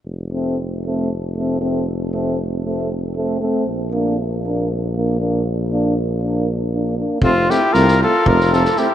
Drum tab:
SD |--------------|--------------|--------------|--------------|
BD |--------------|--------------|--------------|--------------|

SD |--o-oo---oooo-|
BD |o-------o-----|